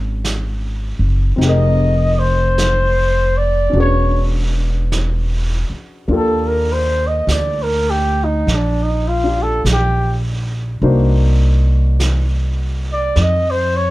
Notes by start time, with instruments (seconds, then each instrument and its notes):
Already playing: upright bass G#1, grand piano C#4 D#4 F4 G#4 A#4
0.25 brush sweep, snare, hi-hat pedal
0.99 upright bass F#1
1.36 upright bass F1, grand piano C4 D#4
1.41 grand piano G4 G#4, brush sweep, snare
1.47 grand piano A#4, trumpet D#5
2.19 trumpet C5
2.58 brush sweep, snare, hi-hat pedal
3.37 trumpet D5
3.70 upright bass E1, grand piano C#4 D4
3.75 grand piano F#4 G#4, brush sweep
3.80 grand piano B4, trumpet C#5
4.92 brush sweep, snare, hi-hat pedal
5.70 muted upright bass stroke
6.08 upright bass D#2, grand piano A#3 D4 F4, brush sweep
6.12 grand piano G4 A4
6.17 trumpet A4
6.48 trumpet A#4
6.72 trumpet C5
7.07 trumpet D#5
7.27 upright bass D2, brush sweep, snare, hi-hat pedal
7.32 trumpet D5
7.63 trumpet A#4
7.90 trumpet G4
8.24 trumpet D#4
8.47 upright bass A#1, brush sweep, snare
8.55 trumpet D4
8.83 trumpet D#4
9.08 trumpet F4
9.24 grand piano D4 F4 G4
9.43 trumpet A4
9.65 upright bass A#1, brush sweep, snare, hi-hat pedal
9.72 trumpet G4
10.82 upright bass C2, grand piano A#3 D4 D#4 F#4 C5, brush sweep
12.00 brush sweep, snare, hi-hat pedal
12.93 trumpet D5
13.16 upright bass F2, brush sweep, snare
13.22 trumpet D#5
13.51 trumpet C5
13.76 trumpet C#5